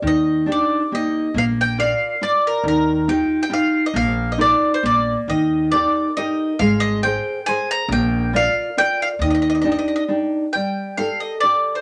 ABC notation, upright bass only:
X:1
M:3/4
L:1/8
Q:"Swing" 1/4=137
K:Eb
V:1 name="Upright bass" clef=bass
E,,4 z2 | B,,,4 z2 | E,,4 z2 | B,,,4 B,,,2 |
E,,4 z2 | A,,,4 z2 | B,,,4 z2 | E,,4 z2 |
[K:Gm] z6 |]